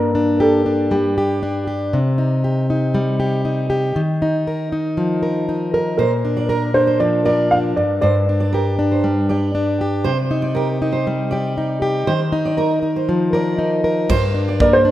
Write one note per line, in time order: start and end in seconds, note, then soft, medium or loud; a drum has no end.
0.00 1.93 G2 medium
0.00 1.12 A#3 medium
0.00 0.15 D4 medium
0.00 0.40 A#4 medium
0.00 0.42 A#4 medium
0.15 0.65 D4 medium
0.40 1.17 G4 medium
0.40 0.88 A4 medium
0.66 1.41 D4 medium
0.91 1.98 G3 medium
0.91 1.64 G4 medium
1.18 1.67 G4 medium
1.43 1.98 D4 medium
1.67 1.98 G4 medium
1.93 3.95 C3 medium
2.18 2.70 D#4 medium
2.44 3.18 G4 medium
2.70 3.45 D#4 medium
2.95 4.01 G3 medium
3.20 3.69 G4 medium
3.45 4.01 D#4 medium
3.70 4.01 G4 medium
3.96 5.99 D#3 medium
4.22 4.71 D#4 soft
4.47 5.22 A#4 medium
4.72 5.48 D#4 medium
4.97 6.04 F3 medium
5.23 5.74 A#4 medium
5.49 6.04 D#4 soft
5.74 5.96 A#4 medium
5.74 6.49 A#4 medium
5.98 7.76 A#2 medium
5.98 6.70 A#4 medium
5.98 6.11 C5 medium
6.25 6.74 D4 soft
6.37 6.49 D5 medium
6.49 7.26 A#4 medium
6.49 6.62 A#4 medium
6.74 7.52 D4 soft
6.74 6.98 C5 medium
6.87 6.99 C5 medium
7.00 7.81 F3 medium
7.00 7.24 D5 medium
7.25 8.54 A#4 medium
7.25 7.61 D5 medium
7.25 7.52 D5 medium
7.51 8.29 D4 medium
7.51 7.57 F5 medium
7.76 8.02 G2 medium
7.76 8.00 D5 medium
8.01 10.05 G2 medium
8.01 8.14 C5 medium
8.01 8.49 D5 medium
8.29 8.78 D4 medium
8.40 8.52 D5 medium
8.53 9.30 G4 medium
8.53 8.65 A#4 medium
8.79 9.54 D4 soft
8.92 9.03 C5 medium
9.04 10.10 G3 medium
9.29 9.81 G4 medium
9.29 9.65 D5 medium
9.55 10.10 D4 medium
9.81 10.10 G4 medium
10.04 12.07 C3 medium
10.04 10.16 C5 medium
10.31 10.81 D#4 medium
10.42 10.54 D5 medium
10.55 11.31 G4 medium
10.55 10.67 A#4 medium
10.82 11.57 D#4 medium
10.92 11.05 C5 medium
11.07 12.13 G3 medium
11.31 11.81 G4 medium
11.31 11.67 D5 medium
11.58 12.13 D#4 medium
11.82 12.12 G4 medium
12.07 14.10 D#3 medium
12.07 12.19 C5 medium
12.32 12.81 D#4 medium
12.45 12.57 D5 medium
12.57 13.33 A#4 medium
12.57 12.70 A#4 medium
12.83 13.57 D#4 medium
12.96 13.08 C5 medium
13.09 14.15 F3 medium
13.33 13.84 A#4 medium
13.33 13.70 D5 medium
13.59 14.15 D#4 medium
13.84 14.91 A#4 medium
14.09 14.91 G2 medium
14.09 14.22 C5 medium
14.09 kick medium
14.09 crash medium
14.34 14.84 D4 medium
14.49 14.60 D5 medium
14.60 14.91 A#3 medium
14.60 14.73 A#4 medium
14.60 14.74 D5 medium
14.60 kick medium
14.73 14.91 C5 medium
14.85 14.91 D4 soft